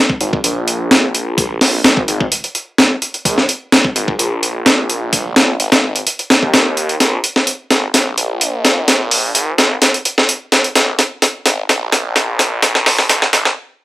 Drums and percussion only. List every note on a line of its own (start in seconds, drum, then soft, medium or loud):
0.10 kick medium
0.21 closed hi-hat medium
0.33 kick medium
0.44 closed hi-hat medium
0.68 closed hi-hat medium
0.91 snare loud
0.91 closed hi-hat medium
1.15 closed hi-hat medium
1.38 kick loud
1.38 closed hi-hat medium
1.61 snare soft
1.61 open hi-hat medium
1.84 snare loud
1.84 closed hi-hat medium
1.97 kick medium
2.08 closed hi-hat medium
2.21 kick medium
2.32 closed hi-hat medium
2.44 closed hi-hat soft
2.55 closed hi-hat medium
2.78 snare loud
2.78 closed hi-hat medium
3.02 closed hi-hat medium
3.14 closed hi-hat soft
3.25 kick loud
3.25 closed hi-hat medium
3.38 snare soft
3.49 closed hi-hat medium
3.72 snare loud
3.72 closed hi-hat medium
3.85 kick medium
3.96 closed hi-hat medium
4.08 kick medium
4.19 closed hi-hat medium
4.43 closed hi-hat medium
4.66 snare loud
4.66 closed hi-hat medium
4.90 closed hi-hat medium
5.13 kick loud
5.13 closed hi-hat medium
5.36 snare loud
5.36 closed hi-hat medium
5.60 closed hi-hat medium
5.72 snare loud
5.72 closed hi-hat medium
5.96 closed hi-hat medium
6.07 closed hi-hat medium
6.19 closed hi-hat soft
6.30 snare loud
6.30 closed hi-hat medium
6.42 kick medium
6.54 snare loud
6.54 closed hi-hat medium
6.77 closed hi-hat medium
6.89 closed hi-hat soft
7.00 snare soft
7.00 closed hi-hat medium
7.24 closed hi-hat medium
7.36 snare soft
7.47 closed hi-hat medium
7.71 snare medium
7.71 closed hi-hat medium
7.94 snare medium
7.94 closed hi-hat medium
8.18 closed hi-hat medium
8.41 closed hi-hat medium
8.65 snare medium
8.65 closed hi-hat medium
8.88 snare medium
8.88 closed hi-hat medium
9.11 open hi-hat medium
9.35 closed hi-hat medium
9.58 snare medium
9.58 closed hi-hat medium
9.82 snare medium
9.82 closed hi-hat medium
9.94 closed hi-hat soft
10.05 closed hi-hat medium
10.18 snare medium
10.29 closed hi-hat medium
10.52 snare medium
10.52 closed hi-hat medium
10.64 closed hi-hat soft
10.75 snare medium
10.75 closed hi-hat medium
10.99 snare medium
10.99 closed hi-hat medium
11.22 snare medium
11.22 closed hi-hat medium
11.46 snare medium
11.46 closed hi-hat medium
11.69 snare medium
11.69 closed hi-hat medium
11.92 snare medium
11.92 closed hi-hat medium
12.16 snare medium
12.16 closed hi-hat medium
12.39 snare medium
12.39 closed hi-hat medium
12.62 snare medium
12.62 closed hi-hat medium
12.75 snare medium
12.86 snare loud
12.86 open hi-hat medium
12.99 snare medium
13.09 snare loud
13.09 closed hi-hat medium
13.22 snare medium
13.33 snare loud
13.33 closed hi-hat medium
13.45 snare medium